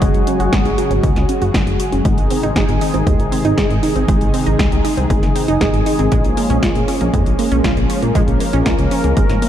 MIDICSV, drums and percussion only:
0, 0, Header, 1, 2, 480
1, 0, Start_track
1, 0, Tempo, 508475
1, 16, Time_signature, 4, 2, 24, 8
1, 8957, End_track
2, 0, Start_track
2, 0, Title_t, "Drums"
2, 16, Note_on_c, 9, 36, 120
2, 16, Note_on_c, 9, 42, 65
2, 111, Note_off_c, 9, 36, 0
2, 111, Note_off_c, 9, 42, 0
2, 136, Note_on_c, 9, 42, 37
2, 231, Note_off_c, 9, 42, 0
2, 256, Note_on_c, 9, 42, 87
2, 351, Note_off_c, 9, 42, 0
2, 377, Note_on_c, 9, 42, 36
2, 472, Note_off_c, 9, 42, 0
2, 497, Note_on_c, 9, 36, 108
2, 497, Note_on_c, 9, 38, 125
2, 497, Note_on_c, 9, 42, 64
2, 591, Note_off_c, 9, 36, 0
2, 591, Note_off_c, 9, 38, 0
2, 591, Note_off_c, 9, 42, 0
2, 617, Note_on_c, 9, 42, 35
2, 711, Note_off_c, 9, 42, 0
2, 737, Note_on_c, 9, 42, 81
2, 831, Note_off_c, 9, 42, 0
2, 857, Note_on_c, 9, 42, 36
2, 951, Note_off_c, 9, 42, 0
2, 976, Note_on_c, 9, 36, 118
2, 977, Note_on_c, 9, 42, 61
2, 1071, Note_off_c, 9, 36, 0
2, 1071, Note_off_c, 9, 42, 0
2, 1098, Note_on_c, 9, 38, 38
2, 1098, Note_on_c, 9, 42, 38
2, 1192, Note_off_c, 9, 38, 0
2, 1192, Note_off_c, 9, 42, 0
2, 1217, Note_on_c, 9, 42, 90
2, 1311, Note_off_c, 9, 42, 0
2, 1337, Note_on_c, 9, 42, 36
2, 1431, Note_off_c, 9, 42, 0
2, 1456, Note_on_c, 9, 36, 107
2, 1457, Note_on_c, 9, 38, 115
2, 1457, Note_on_c, 9, 42, 62
2, 1551, Note_off_c, 9, 36, 0
2, 1551, Note_off_c, 9, 38, 0
2, 1551, Note_off_c, 9, 42, 0
2, 1576, Note_on_c, 9, 42, 37
2, 1671, Note_off_c, 9, 42, 0
2, 1696, Note_on_c, 9, 42, 86
2, 1791, Note_off_c, 9, 42, 0
2, 1817, Note_on_c, 9, 42, 37
2, 1911, Note_off_c, 9, 42, 0
2, 1936, Note_on_c, 9, 36, 117
2, 1936, Note_on_c, 9, 42, 62
2, 2030, Note_off_c, 9, 36, 0
2, 2031, Note_off_c, 9, 42, 0
2, 2057, Note_on_c, 9, 42, 38
2, 2151, Note_off_c, 9, 42, 0
2, 2176, Note_on_c, 9, 46, 109
2, 2270, Note_off_c, 9, 46, 0
2, 2297, Note_on_c, 9, 42, 36
2, 2391, Note_off_c, 9, 42, 0
2, 2416, Note_on_c, 9, 36, 102
2, 2417, Note_on_c, 9, 38, 123
2, 2417, Note_on_c, 9, 42, 63
2, 2510, Note_off_c, 9, 36, 0
2, 2511, Note_off_c, 9, 38, 0
2, 2511, Note_off_c, 9, 42, 0
2, 2536, Note_on_c, 9, 42, 36
2, 2631, Note_off_c, 9, 42, 0
2, 2656, Note_on_c, 9, 46, 97
2, 2750, Note_off_c, 9, 46, 0
2, 2777, Note_on_c, 9, 42, 34
2, 2871, Note_off_c, 9, 42, 0
2, 2896, Note_on_c, 9, 36, 113
2, 2897, Note_on_c, 9, 42, 61
2, 2990, Note_off_c, 9, 36, 0
2, 2991, Note_off_c, 9, 42, 0
2, 3017, Note_on_c, 9, 42, 38
2, 3112, Note_off_c, 9, 42, 0
2, 3136, Note_on_c, 9, 46, 107
2, 3231, Note_off_c, 9, 46, 0
2, 3256, Note_on_c, 9, 42, 38
2, 3350, Note_off_c, 9, 42, 0
2, 3376, Note_on_c, 9, 36, 104
2, 3376, Note_on_c, 9, 38, 111
2, 3376, Note_on_c, 9, 42, 63
2, 3470, Note_off_c, 9, 36, 0
2, 3471, Note_off_c, 9, 38, 0
2, 3471, Note_off_c, 9, 42, 0
2, 3496, Note_on_c, 9, 42, 36
2, 3591, Note_off_c, 9, 42, 0
2, 3616, Note_on_c, 9, 46, 105
2, 3710, Note_off_c, 9, 46, 0
2, 3736, Note_on_c, 9, 42, 36
2, 3831, Note_off_c, 9, 42, 0
2, 3855, Note_on_c, 9, 36, 118
2, 3856, Note_on_c, 9, 42, 66
2, 3950, Note_off_c, 9, 36, 0
2, 3950, Note_off_c, 9, 42, 0
2, 3975, Note_on_c, 9, 42, 38
2, 4070, Note_off_c, 9, 42, 0
2, 4095, Note_on_c, 9, 46, 106
2, 4190, Note_off_c, 9, 46, 0
2, 4215, Note_on_c, 9, 42, 36
2, 4310, Note_off_c, 9, 42, 0
2, 4336, Note_on_c, 9, 36, 101
2, 4336, Note_on_c, 9, 38, 114
2, 4336, Note_on_c, 9, 42, 65
2, 4430, Note_off_c, 9, 36, 0
2, 4430, Note_off_c, 9, 38, 0
2, 4430, Note_off_c, 9, 42, 0
2, 4456, Note_on_c, 9, 42, 38
2, 4551, Note_off_c, 9, 42, 0
2, 4576, Note_on_c, 9, 46, 109
2, 4670, Note_off_c, 9, 46, 0
2, 4696, Note_on_c, 9, 42, 36
2, 4791, Note_off_c, 9, 42, 0
2, 4816, Note_on_c, 9, 36, 112
2, 4817, Note_on_c, 9, 42, 64
2, 4910, Note_off_c, 9, 36, 0
2, 4911, Note_off_c, 9, 42, 0
2, 4936, Note_on_c, 9, 38, 34
2, 4936, Note_on_c, 9, 42, 38
2, 5030, Note_off_c, 9, 38, 0
2, 5030, Note_off_c, 9, 42, 0
2, 5056, Note_on_c, 9, 46, 110
2, 5150, Note_off_c, 9, 46, 0
2, 5176, Note_on_c, 9, 42, 38
2, 5270, Note_off_c, 9, 42, 0
2, 5296, Note_on_c, 9, 36, 106
2, 5296, Note_on_c, 9, 38, 111
2, 5296, Note_on_c, 9, 42, 61
2, 5390, Note_off_c, 9, 36, 0
2, 5391, Note_off_c, 9, 38, 0
2, 5391, Note_off_c, 9, 42, 0
2, 5415, Note_on_c, 9, 42, 37
2, 5510, Note_off_c, 9, 42, 0
2, 5535, Note_on_c, 9, 46, 109
2, 5629, Note_off_c, 9, 46, 0
2, 5655, Note_on_c, 9, 42, 40
2, 5750, Note_off_c, 9, 42, 0
2, 5775, Note_on_c, 9, 42, 70
2, 5776, Note_on_c, 9, 36, 106
2, 5869, Note_off_c, 9, 42, 0
2, 5870, Note_off_c, 9, 36, 0
2, 5895, Note_on_c, 9, 42, 42
2, 5990, Note_off_c, 9, 42, 0
2, 6015, Note_on_c, 9, 46, 109
2, 6110, Note_off_c, 9, 46, 0
2, 6137, Note_on_c, 9, 42, 40
2, 6231, Note_off_c, 9, 42, 0
2, 6256, Note_on_c, 9, 36, 101
2, 6256, Note_on_c, 9, 38, 113
2, 6256, Note_on_c, 9, 42, 66
2, 6350, Note_off_c, 9, 36, 0
2, 6350, Note_off_c, 9, 38, 0
2, 6350, Note_off_c, 9, 42, 0
2, 6376, Note_on_c, 9, 42, 39
2, 6470, Note_off_c, 9, 42, 0
2, 6496, Note_on_c, 9, 46, 106
2, 6591, Note_off_c, 9, 46, 0
2, 6616, Note_on_c, 9, 42, 41
2, 6711, Note_off_c, 9, 42, 0
2, 6736, Note_on_c, 9, 36, 108
2, 6737, Note_on_c, 9, 42, 68
2, 6830, Note_off_c, 9, 36, 0
2, 6831, Note_off_c, 9, 42, 0
2, 6856, Note_on_c, 9, 42, 42
2, 6951, Note_off_c, 9, 42, 0
2, 6975, Note_on_c, 9, 46, 108
2, 7069, Note_off_c, 9, 46, 0
2, 7095, Note_on_c, 9, 42, 39
2, 7190, Note_off_c, 9, 42, 0
2, 7215, Note_on_c, 9, 38, 108
2, 7215, Note_on_c, 9, 42, 69
2, 7216, Note_on_c, 9, 36, 104
2, 7309, Note_off_c, 9, 38, 0
2, 7309, Note_off_c, 9, 42, 0
2, 7310, Note_off_c, 9, 36, 0
2, 7335, Note_on_c, 9, 42, 39
2, 7430, Note_off_c, 9, 42, 0
2, 7455, Note_on_c, 9, 46, 110
2, 7549, Note_off_c, 9, 46, 0
2, 7575, Note_on_c, 9, 42, 40
2, 7670, Note_off_c, 9, 42, 0
2, 7695, Note_on_c, 9, 36, 113
2, 7695, Note_on_c, 9, 42, 68
2, 7790, Note_off_c, 9, 36, 0
2, 7790, Note_off_c, 9, 42, 0
2, 7815, Note_on_c, 9, 42, 42
2, 7909, Note_off_c, 9, 42, 0
2, 7933, Note_on_c, 9, 46, 112
2, 8028, Note_off_c, 9, 46, 0
2, 8054, Note_on_c, 9, 42, 40
2, 8148, Note_off_c, 9, 42, 0
2, 8174, Note_on_c, 9, 38, 114
2, 8174, Note_on_c, 9, 42, 70
2, 8175, Note_on_c, 9, 36, 103
2, 8268, Note_off_c, 9, 38, 0
2, 8268, Note_off_c, 9, 42, 0
2, 8270, Note_off_c, 9, 36, 0
2, 8294, Note_on_c, 9, 42, 41
2, 8388, Note_off_c, 9, 42, 0
2, 8414, Note_on_c, 9, 46, 104
2, 8508, Note_off_c, 9, 46, 0
2, 8534, Note_on_c, 9, 42, 41
2, 8629, Note_off_c, 9, 42, 0
2, 8654, Note_on_c, 9, 42, 68
2, 8655, Note_on_c, 9, 36, 110
2, 8748, Note_off_c, 9, 42, 0
2, 8750, Note_off_c, 9, 36, 0
2, 8774, Note_on_c, 9, 38, 35
2, 8774, Note_on_c, 9, 42, 42
2, 8869, Note_off_c, 9, 38, 0
2, 8869, Note_off_c, 9, 42, 0
2, 8895, Note_on_c, 9, 46, 113
2, 8957, Note_off_c, 9, 46, 0
2, 8957, End_track
0, 0, End_of_file